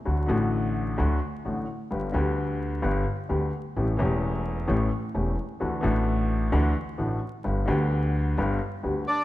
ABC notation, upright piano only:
X:1
M:4/4
L:1/8
Q:1/4=130
K:G
V:1 name="Upright piano" clef=bass
[D,,D,F,A,F] [A,,,A,,D,F,A,F]3 [D,,D,F,A,F] z [A,,,A,,D,F,A,F] z | [G,,,G,,D,G,B,G] [D,,D,G,B,G]3 [G,,,G,,D,G,B,G] z [D,,D,G,B,G] z | [A,,,A,,E,A,^CG] [E,,,E,,E,A,CG]3 [A,,,A,,E,A,CG] z [E,,,E,,E,A,CG] z | [D,,D,E,A,DF] [A,,,A,,E,A,DF]3 [D,,D,E,A,DF] z [A,,,A,,E,A,DF] z |
[G,,,G,,D,G,B,G] [D,,D,G,B,G]3 [G,,,G,,D,G,B,G] z [D,,D,G,B,G] z |]